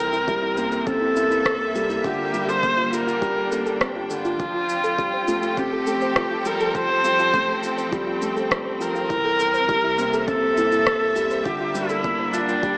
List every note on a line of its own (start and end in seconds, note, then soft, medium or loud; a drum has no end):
0.00 2.01 C2 medium
0.00 2.05 C3 medium
0.00 2.99 C4 medium
0.00 0.88 A#4 loud
0.00 0.63 G5 medium
0.13 0.24 E4 medium
0.13 shaker soft
0.22 4.40 A#3 medium
0.27 0.56 G3 medium
0.27 0.35 E4 loud
0.27 kick loud
0.27 shaker soft
0.42 0.50 E4 medium
0.57 0.85 A#3 medium
0.57 shaker medium
0.71 0.76 A4 medium
0.71 shaker soft
0.77 2.99 E5 medium
0.86 1.03 C4 medium
0.86 0.94 A4 medium
0.86 2.07 A4 loud
0.86 kick loud
0.86 shaker soft
1.01 1.12 E4 medium
1.16 1.44 A#3 medium
1.16 1.23 E4 loud
1.16 shaker medium
1.31 1.38 E4 loud
1.31 shaker soft
1.46 kick loud
1.46 cross-stick medium
1.46 shaker soft
1.60 1.65 A4 medium
1.75 1.92 G3 medium
1.75 1.82 A4 medium
1.75 shaker medium
1.90 2.01 E4 medium
1.90 shaker soft
2.04 4.37 G1 medium
2.04 2.21 D3 medium
2.04 4.39 G3 medium
2.04 2.12 F4 medium
2.04 2.50 G4 loud
2.04 kick loud
2.04 shaker soft
2.19 2.26 F4 loud
2.34 2.62 G3 medium
2.34 shaker medium
2.48 2.53 A4 medium
2.48 2.95 C5 loud
2.48 shaker soft
2.62 2.91 A#3 medium
2.62 5.61 D4 medium
2.62 2.70 A4 medium
2.62 kick loud
2.62 shaker soft
2.77 2.89 F4 medium
2.92 3.00 F4 loud
2.92 3.81 A#4 loud
2.92 shaker medium
3.05 3.14 F4 loud
3.05 10.05 G5 medium
3.05 shaker soft
3.22 3.39 G3 medium
3.22 kick loud
3.22 shaker soft
3.37 3.41 A4 medium
3.51 3.80 A#3 medium
3.51 3.59 A4 medium
3.51 shaker medium
3.66 3.73 A4 medium
3.66 shaker soft
3.81 4.09 G3 medium
3.81 3.88 C4 medium
3.81 kick loud
3.81 cross-stick medium
3.81 shaker soft
3.96 4.03 F4 medium
4.10 4.27 D3 medium
4.10 5.60 F4 loud
4.10 4.21 A4 medium
4.10 shaker medium
4.25 4.36 F4 medium
4.25 shaker soft
4.39 9.07 F1 medium
4.39 4.56 F3 medium
4.39 9.10 F3 medium
4.39 4.47 F4 medium
4.39 kick loud
4.39 shaker soft
4.54 4.62 F4 loud
4.60 12.40 C4 medium
4.69 shaker medium
4.84 4.88 A4 medium
4.84 shaker soft
4.98 5.27 G3 medium
4.98 5.06 A4 medium
4.98 kick loud
4.98 shaker soft
5.13 5.18 C5 medium
5.27 5.56 A3 medium
5.27 5.35 F4 loud
5.27 shaker medium
5.32 9.10 A4 medium
5.42 5.50 F4 medium
5.42 shaker soft
5.57 5.74 C4 medium
5.57 6.48 G4 loud
5.57 kick loud
5.57 shaker soft
5.72 5.76 A4 medium
5.87 6.15 A3 medium
5.87 5.94 A4 medium
5.87 shaker medium
6.01 6.06 C5 medium
6.01 shaker soft
6.16 6.24 F4 loud
6.16 kick loud
6.16 cross-stick medium
6.16 shaker soft
6.31 6.38 F4 loud
6.45 6.62 G3 medium
6.45 6.77 A#4 loud
6.45 shaker medium
6.60 6.65 A4 medium
6.60 shaker soft
6.75 6.92 F3 medium
6.75 6.82 A4 medium
6.75 7.93 C5 loud
6.75 kick loud
6.75 shaker soft
6.90 6.94 C5 medium
7.04 7.32 G3 medium
7.04 7.12 F4 loud
7.04 shaker medium
7.19 7.26 F4 loud
7.19 shaker soft
7.34 7.62 A3 medium
7.34 kick loud
7.34 shaker soft
7.48 7.53 A4 medium
7.63 7.70 A4 medium
7.63 shaker medium
7.78 7.82 C5 medium
7.78 shaker soft
7.92 8.09 G3 medium
7.92 8.00 F4 loud
7.92 kick loud
7.92 shaker soft
8.07 8.14 F4 loud
8.21 8.50 A3 medium
8.21 shaker medium
8.36 8.41 A4 medium
8.36 shaker soft
8.51 8.79 G3 medium
8.51 8.58 A4 medium
8.51 kick loud
8.51 cross-stick medium
8.51 shaker soft
8.66 8.70 C5 medium
8.80 8.97 F3 medium
8.80 8.88 F4 loud
8.80 10.28 A#4 loud
8.80 shaker medium
8.95 9.03 F4 loud
8.95 shaker soft
9.10 11.43 C2 medium
9.10 11.45 C3 medium
9.10 9.27 E3 medium
9.10 kick loud
9.10 shaker soft
9.24 9.29 A4 medium
9.39 9.47 A4 medium
9.39 shaker medium
9.54 9.58 C5 medium
9.54 shaker soft
9.68 9.97 G3 medium
9.68 9.76 E4 loud
9.68 kick loud
9.68 shaker soft
9.77 12.40 E5 medium
9.84 9.91 E4 loud
9.98 10.26 A#3 medium
9.98 shaker medium
10.13 12.78 A#3 medium
10.13 10.18 A4 medium
10.13 shaker soft
10.27 10.44 C4 medium
10.27 11.46 A4 loud
10.27 10.35 A4 medium
10.27 kick loud
10.27 shaker soft
10.43 10.47 C5 medium
10.57 10.85 A#3 medium
10.57 10.65 E4 loud
10.57 shaker medium
10.72 10.79 E4 loud
10.72 shaker soft
10.87 kick loud
10.87 cross-stick medium
10.87 shaker soft
11.01 11.06 A4 medium
11.16 11.33 G3 medium
11.16 11.24 A4 medium
11.16 shaker medium
11.31 11.35 C5 medium
11.31 shaker soft
11.44 12.78 G1 medium
11.44 11.62 D3 medium
11.44 12.78 G3 medium
11.44 11.53 F4 loud
11.44 11.90 G4 loud
11.44 kick loud
11.44 shaker soft
11.60 11.68 F4 loud
11.72 12.03 G3 medium
11.72 12.78 D4 medium
11.72 shaker medium
11.89 12.35 E4 loud
11.89 11.94 A4 medium
11.89 shaker soft
12.04 12.32 A#3 medium
12.04 12.12 A4 medium
12.04 kick loud
12.04 shaker soft
12.19 12.24 C5 medium
12.33 12.78 D4 medium
12.33 12.41 F4 loud
12.33 shaker medium
12.48 12.56 F4 loud
12.48 12.78 G5 medium
12.48 shaker soft
12.63 12.78 G3 loud
12.63 kick loud
12.63 shaker soft